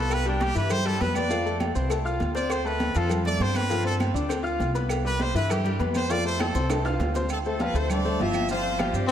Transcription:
Already playing: upright bass C2, grand piano B3 B4 B5, trumpet A4
0.10 trumpet B4, cowbell, high conga, low agogo, claves, maracas
0.26 grand piano G3 G4 G5, trumpet D4, high conga, maracas
0.40 trumpet G4, cowbell, high conga, low agogo, maracas
0.55 upright bass G2, grand piano E3 E4 E5, trumpet B4, cowbell, high conga, maracas
0.70 trumpet C5, cowbell, high conga, low conga, low agogo, claves, maracas
0.85 grand piano G3 G4 G5, trumpet A4, cowbell, high conga, maracas
1.00 upright bass F2, grand piano B3 B4 B5, trumpet B4, cowbell, high conga, low timbale, low agogo, maracas
1.15 trumpet D5, cowbell, high conga, low agogo, claves, maracas
1.30 grand piano F3 F4 F5, cowbell, high conga, low agogo, maracas
1.46 grand piano A3 A4 A5, high conga, maracas
1.60 cowbell, high conga, low agogo, claves, maracas
1.75 upright bass C2, grand piano C4 C5 C6, maracas
1.90 grand piano A3 A4 A5, cowbell, high conga, low agogo, claves, maracas
2.05 grand piano F4 F5 F6, high conga, maracas
2.20 upright bass D2, cowbell, high conga, low agogo, maracas
2.35 grand piano C4 C5 C6, trumpet D5, cowbell, high conga, maracas
2.50 trumpet C5, cowbell, high conga, low agogo, claves, maracas
2.65 grand piano A3 A4 A5, trumpet B4, high conga, maracas
2.80 cowbell, high conga, low agogo, maracas
2.95 upright bass F2, grand piano F3 F4 F5, trumpet A4, cowbell, high conga, maracas
3.09 cowbell, high conga, low conga, low agogo, claves, maracas
3.25 grand piano A3 A4 A5, trumpet D5, cowbell, high conga, low conga, maracas
3.40 upright bass G2, grand piano C4 C5 C6, trumpet C5, cowbell, high conga, low agogo, maracas
3.55 trumpet B4, cowbell, high conga, low agogo, claves, maracas
3.70 grand piano F3 F4 F5, cowbell, high conga, low agogo, maracas
3.84 grand piano C4 C5 C6, trumpet A4, high conga, maracas
4.00 cowbell, high conga, low agogo, claves, maracas
4.14 upright bass D2, grand piano D4 D5 D6, maracas
4.29 grand piano C4 C5 C6, cowbell, high conga, low agogo, claves, maracas
4.43 grand piano F4 F5 F6, high conga, maracas
4.60 upright bass C2, cowbell, high conga, low agogo, maracas
4.74 grand piano B3 B4 B5, cowbell, high conga, maracas
4.89 cowbell, high conga, low agogo, claves, maracas
5.05 grand piano G3 G4 G5, trumpet B4, high conga, maracas
5.19 trumpet C5, cowbell, high conga, low agogo, maracas
5.34 upright bass G2, grand piano E3 E4 E5, trumpet B4, cowbell, maracas
5.50 trumpet G4, cowbell, high conga, low conga, low agogo, claves, maracas
5.64 grand piano G3 G4 G5, cowbell, high conga, maracas
5.79 upright bass F2, grand piano B3 B4 B5, cowbell, high conga, low agogo, maracas
5.95 trumpet C5, cowbell, high conga, low agogo, claves, maracas
6.10 grand piano F3 F4 F5, trumpet D5, cowbell, high conga, low agogo, maracas
6.25 grand piano A3 A4 A5, trumpet C5, high conga, maracas
6.39 trumpet A4, cowbell, high bongo, high conga, low agogo, claves, maracas
6.54 upright bass C2, grand piano C4 C5 C6, high bongo, maracas
6.69 grand piano A3 A4 A5, cowbell, high bongo, high conga, high timbale, low agogo, claves, maracas
6.85 grand piano F4 F5 F6, high conga, high timbale, maracas
6.99 upright bass D2, cowbell, high conga, low timbale, low agogo, maracas
7.14 grand piano C4 C5 C6, cowbell, low bongo, high conga, low timbale, maracas
7.29 horn section A3 A4, high conga, low agogo, claves, maracas
7.45 horn section A3 A4, grand piano A3 A4 C5, high conga, maracas
7.59 grand piano F3 F4 F5, horn section B3 B4, high conga, low agogo, maracas
7.74 upright bass D2, grand piano A3 A4 C5, horn section C4 C5, maracas
7.90 horn section D4 D5, high conga, low conga, low agogo, claves, maracas
8.05 grand piano A3 A4 C5, high conga, low conga, maracas
8.20 upright bass G1, grand piano F3 F4 F5, horn section E4 E5, high conga, low timbale, low agogo, maracas
8.34 high conga, low agogo, claves, maracas
8.49 grand piano F3 F4 F5, horn section C4 C5, high conga, low agogo, maracas
8.64 high conga, maracas
8.79 grand piano F3 F4 F5, horn section G3 G4, high conga, low agogo, claves, maracas
8.93 upright bass G2, grand piano C4 C5 D5, maracas
9.08 baritone saxophone C4

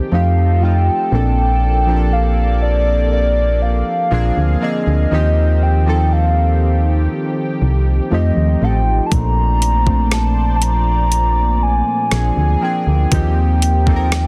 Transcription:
Already playing: analog synth pad G4
0.11 fm bass F2, synth keys F3 A3 C4 D#4 G4, analog synth pad F3 D#4 A4, soft synth lead F5
0.61 synth keys F3 A3 C4 D#4 F4, soft synth lead G5
1.11 fm bass A#1, synth keys F3 A#3 C4 D4 A4, analog synth pad A#3 D5, soft synth lead G5
1.86 synth keys F3 A#3 C4 D4 G4
1.96 synth keys A4
2.13 soft synth lead F5
2.62 soft synth lead D5
3.12 soft synth lead D5
3.62 soft synth lead F5
4.11 fm bass A#1, synth keys F3 A#3 C4 D4 G#4, analog synth pad G#4 F5
4.37 fm bass D2
4.61 synth keys D3 F3 A#3 C4 G#4, soft synth lead D#5
4.87 fm bass D2
5.11 fm bass D#2, analog synth pad D#3 C4 G4, synth keys F3 A#3 C4 D#4 G4
5.63 soft synth lead G5
5.86 synth keys F3 A#3 C4 D#4 A4
6.13 soft synth lead F5
7.62 fm bass C2
8.11 fm bass F2, synth keys F3 A3 C4 D#4 G4, analog synth pad F3 D#4 C5, soft synth lead D#5
8.37 fm bass D#2
8.61 fm bass A1, synth keys F3 A3 C4 D#4 A4, soft synth lead G5
9.06 soft synth lead A5
9.11 fm bass A#1, analog synth pad A#2 D5, synth keys F3 A3 A#3 C4 D4, soft synth lead A#5, kick, closed hi-hat
9.62 closed hi-hat
9.86 synth keys F3 A3 A#3 C4 D4, kick
10.11 soft synth lead A5, cross-stick, closed hi-hat
10.56 soft synth lead A5
10.62 soft synth lead A#5, closed hi-hat
11.12 closed hi-hat
11.63 soft synth lead G#5
12.11 fm bass A#1, synth keys F3 A#3 C4 D4 G#4, analog synth pad G#4, cross-stick, closed hi-hat
12.37 fm bass D2
12.61 synth keys F3 A#3 C4 D4 G#4, soft synth lead G5
12.87 fm bass D2
13.11 fm bass D#2, analog synth pad D#3 C4 G4, synth keys F3 A#3 C4 D#4 G4, soft synth lead G5, kick, closed hi-hat
13.62 closed hi-hat
13.86 synth keys F3 A#3 C4 D#4 A4, kick
13.96 synth keys A#4
14.12 cross-stick, closed hi-hat

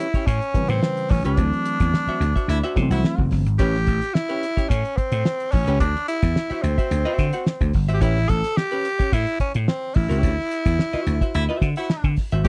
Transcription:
Already playing: tenor saxophone E4
0.14 hollow-body jazz guitar C#4 G4 C#5, kick, closed hi-hat
0.26 slap bass A2, tenor saxophone C#4, kick, closed hi-hat
0.42 closed hi-hat
0.54 reed electric piano E3 G3 C4 B4, muted slap bass stroke, kick, closed hi-hat
0.61 reed electric piano C#3
0.69 slap bass A2, tenor saxophone C4, closed hi-hat
0.83 snare
0.97 closed hi-hat
1.09 slap bass A1, tenor saxophone C#4, kick, snare, open hi-hat
1.24 slap bass C#2, hollow-body jazz guitar C#4 G4 B4, tenor saxophone D4, closed hi-hat
1.37 slap bass D2, reed electric piano E3 F#3 A3 C4, kick, closed hi-hat
1.53 closed hi-hat
1.65 closed hi-hat
1.80 slap bass E2, kick, snare, closed hi-hat
1.94 snare
2.07 hollow-body jazz guitar F#4 C5 E5, muted slap bass stroke, closed hi-hat
2.20 slap bass D2, closed hi-hat
2.36 hollow-body jazz guitar F#4 C5 E5, kick, closed hi-hat
2.48 slap bass D2, baritone saxophone E4, closed hi-hat
2.63 hollow-body jazz guitar F#4 C5 E5, closed hi-hat
2.76 slap bass C3, reed electric piano E3 F#3 A3 B3, kick, snare, closed hi-hat
2.83 reed electric piano C4
2.90 slap bass C2, baritone saxophone E4, hollow-body jazz guitar F#4 C5 F#5, closed hi-hat
3.04 snare
3.18 slap bass F#1, kick
3.31 slap bass G1, kick, snare, open hi-hat
3.46 slap bass G#1, closed hi-hat
3.59 slap bass A1, hollow-body jazz guitar C#4 G4 B4, tenor saxophone G4, kick, closed hi-hat
3.74 snare
3.87 slap bass A1, kick, closed hi-hat
4.02 snare, closed hi-hat
4.14 tenor saxophone E4, snare
4.29 hollow-body jazz guitar C#4 G4 B4, closed hi-hat
4.43 closed hi-hat
4.57 hollow-body jazz guitar C#4 G4 C#5, kick, closed hi-hat
4.69 slap bass A2, tenor saxophone C#4, kick, closed hi-hat
4.85 closed hi-hat
4.97 tenor saxophone C4, muted slap bass stroke, kick, closed hi-hat
5.12 slap bass A2, closed hi-hat
5.25 snare
5.40 closed hi-hat
5.52 slap bass A1, tenor saxophone C#4, kick, snare, open hi-hat
5.67 slap bass C#2, hollow-body jazz guitar C#4 G4 B4, closed hi-hat
5.80 slap bass D2, tenor saxophone D4, kick, closed hi-hat
5.96 snare
6.08 tenor saxophone E4, closed hi-hat
6.23 slap bass E2, kick, snare, closed hi-hat
6.36 snare
6.50 hollow-body jazz guitar F#4 C5 E5, muted slap bass stroke, closed hi-hat
6.63 slap bass D2, tenor saxophone C4, closed hi-hat
6.78 hollow-body jazz guitar F#4 C5 E5, kick, closed hi-hat
6.91 slap bass D2, closed hi-hat
7.05 hollow-body jazz guitar F#4 C5 E5
7.18 slap bass D3, kick, snare, closed hi-hat
7.33 hollow-body jazz guitar F#4 C5 F#5, closed hi-hat
7.47 snare
7.61 slap bass D2, kick, closed hi-hat
7.73 slap bass G1, kick, open hi-hat
7.88 slap bass G#1, hollow-body jazz guitar F#4 C5 E5, closed hi-hat
7.94 tenor saxophone G4
8.01 slap bass A1, hollow-body jazz guitar C#4 G4 B4, tenor saxophone E4, kick, closed hi-hat
8.17 snare
8.29 slap bass A1, tenor saxophone A4, kick, closed hi-hat
8.44 snare, closed hi-hat
8.57 tenor saxophone G4, snare
8.71 hollow-body jazz guitar C#4 G4 B4, closed hi-hat
8.85 closed hi-hat
8.99 hollow-body jazz guitar C#4 G4 C#5, kick, closed hi-hat
9.12 slap bass A2, tenor saxophone E4, kick, closed hi-hat
9.27 closed hi-hat
9.40 tenor saxophone C#4, muted slap bass stroke, kick, closed hi-hat
9.54 slap bass A2, closed hi-hat
9.68 tenor saxophone C4, snare
9.94 slap bass A1, tenor saxophone E4, kick, snare, open hi-hat
10.09 slap bass C#2, hollow-body jazz guitar C#4 G4 B4, closed hi-hat
10.23 slap bass D2, kick, closed hi-hat
10.39 snare
10.51 closed hi-hat
10.66 slap bass E2, kick, snare, closed hi-hat
10.79 snare
10.93 hollow-body jazz guitar F#4 C5 E5, muted slap bass stroke, closed hi-hat
11.07 slap bass D2, closed hi-hat
11.21 hollow-body jazz guitar F#4 C5 E5, kick, closed hi-hat
11.34 slap bass D2, baritone saxophone E4, closed hi-hat
11.49 hollow-body jazz guitar F#4 C5 E5
11.61 slap bass D3, kick, snare, closed hi-hat
11.76 baritone saxophone E4, hollow-body jazz guitar F#4 C5 F#5, closed hi-hat
11.90 snare
12.04 slap bass D3, kick, closed hi-hat
12.16 kick, snare, open hi-hat
12.32 slap bass G#1, hollow-body jazz guitar F#4 C5 E5, closed hi-hat
12.45 slap bass A1, reed electric piano E3 G3, tenor saxophone G4, kick, closed hi-hat

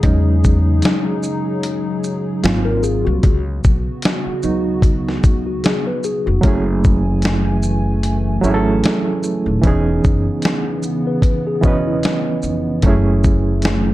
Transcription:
Already playing: analog synth pad C#3 G#4
0.03 upright bass E2, reed electric piano F#3 G#3 C#4 D#4, analog synth pad F#3 D#4, kick, closed hi-hat
0.44 kick, shaker
0.82 snare, closed hi-hat
1.23 shaker
1.63 closed hi-hat
2.04 shaker
2.43 upright bass G#1, analog synth pad C3 A#3 F4, reed electric piano F#3 A#3 C4 F4, snare, closed hi-hat
2.65 tine electric piano A#4
2.83 tine electric piano G#4, shaker
3.05 upright bass C2, tine electric piano F#4
3.23 upright bass C#2, analog synth pad C#3 B3 F#4, kick, closed hi-hat
3.64 upright bass B1, kick, shaker
4.02 snare, closed hi-hat
4.27 muted upright bass stroke
4.43 upright bass C#2, reed electric piano F#3 B3 D#4, shaker
4.82 kick, closed hi-hat
5.09 snare
5.24 upright bass C#2, kick, closed hi-hat, shaker
5.47 tine electric piano F#4
5.64 tine electric piano G#4, snare, closed hi-hat
5.87 tine electric piano B4
6.04 tine electric piano G#4, shaker
6.26 upright bass F1, tine electric piano F#4
6.41 upright bass F#1, analog synth pad E3 A3 G#5, reed electric piano F#3 A3 C#4, kick, closed hi-hat
6.46 reed electric piano E4 G#4
6.84 kick, shaker
7.22 snare, closed hi-hat
7.63 shaker
8.03 closed hi-hat
8.42 upright bass G#1, reed electric piano F#3 A3 C#4, shaker
8.46 reed electric piano E4 G#4
8.54 reed electric piano A4
8.84 snare, closed hi-hat
9.23 shaker
9.46 upright bass D#1
9.62 upright bass E1, analog synth pad C#3 E3 B3, reed electric piano E3 B3 C#4, kick, closed hi-hat
9.66 reed electric piano D#4 G#4
10.04 upright bass F#1, kick, shaker
10.42 snare, closed hi-hat
10.83 shaker
11.07 tine electric piano B4
11.22 kick, closed hi-hat
11.47 tine electric piano G#4
11.61 upright bass E1, reed electric piano E3 B3 C#4, tine electric piano F#4, kick, shaker
11.66 reed electric piano B4 D#5
11.87 tine electric piano E4
12.03 snare, closed hi-hat
12.43 upright bass F1, shaker
12.82 upright bass F#1, reed electric piano F#3 A3 C#4, analog synth pad F#3 A3, kick, closed hi-hat
12.87 reed electric piano E4 G#4
13.24 kick, shaker
13.62 snare, closed hi-hat

